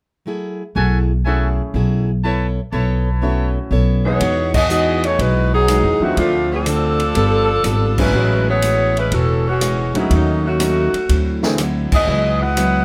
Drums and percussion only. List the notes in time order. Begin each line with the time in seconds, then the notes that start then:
4.20 kick, ride
4.54 kick, crash
4.69 hi-hat pedal
5.04 ride
5.19 kick, ride
5.68 cross-stick, hi-hat pedal, ride
6.17 kick, ride
6.66 hi-hat pedal, ride
7.00 ride
7.15 kick, ride
7.64 cross-stick, hi-hat pedal, ride
7.98 kick, crash
8.62 hi-hat pedal, ride
8.97 ride
9.12 kick, ride
9.61 cross-stick, hi-hat pedal, ride
9.95 ride
10.11 kick, ride
10.60 hi-hat pedal, ride
10.94 ride
11.09 kick, ride
11.43 snare
11.58 cross-stick, hi-hat pedal, ride
11.92 kick, crash
12.57 hi-hat pedal, ride